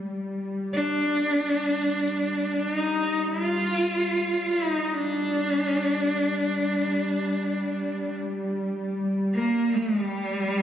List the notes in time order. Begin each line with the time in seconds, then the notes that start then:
0.06 G3
0.73 D4
2.60 D4
2.73 D#4
3.24 E4
3.42 F4
4.53 D#4
4.93 D4
9.35 A#3
9.76 G3